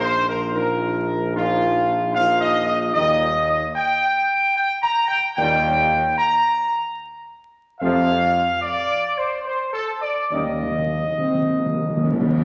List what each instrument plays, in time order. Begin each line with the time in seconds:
Already playing: tuba A#1, trombone section A#2 F3, french horn section A#3 D#4
0.01 trumpet section C5
0.29 trumpet section A#4
0.54 trombone section A#2 F3, french horn section A#3 D#4, trumpet section A#4
1.34 trombone section A#2 F3, french horn section A#3 D#4, trumpet section F4
2.15 trombone section A#2 F3, french horn section A#3 D#4, trumpet section F5
2.41 trumpet section D#5
2.66 trumpet section D#5
2.94 tuba D#2, trombone section A#2 G3, french horn section A#3 D#4, trumpet section D#5
3.76 trumpet section G5
4.56 trumpet section G5
4.82 trumpet section A#5
5.08 trumpet section G5
5.35 tuba D#2, trombone section A#2 G3, french horn section A#3 D#4, trumpet section G5
6.17 trumpet section A#5
7.80 tuba F2, trombone section C3 F3, french horn section A3 C4, trumpet section F5
8.62 trumpet section D5
9.18 trumpet section C5
9.48 trumpet section C5
9.73 trumpet section A4
10.02 trumpet section D5
10.31 tuba D#2, trombone section D#3 G3, timpani D#3, french horn section A#3 C#4, trumpet section D#5
10.39 timpani D#3
10.47 timpani D#3
10.55 timpani D#3
10.63 timpani D#3
10.71 timpani D#3
10.79 timpani D#3
10.86 timpani D#3
10.95 timpani D#3
11.03 timpani D#3
11.10 timpani D#3
11.18 timpani D#3, french horn section C4
11.26 timpani D#3
11.34 timpani D#3
11.42 timpani D#3
11.50 timpani D#3
11.58 timpani D#3, french horn section A#3
11.66 timpani D#3
11.74 timpani D#3
11.82 timpani D#3
11.90 timpani D#3
11.97 timpani D#3
12.04 timpani D#3, french horn section C#4
12.13 timpani D#3
12.21 timpani D#3
12.29 timpani D#3
12.37 timpani D#3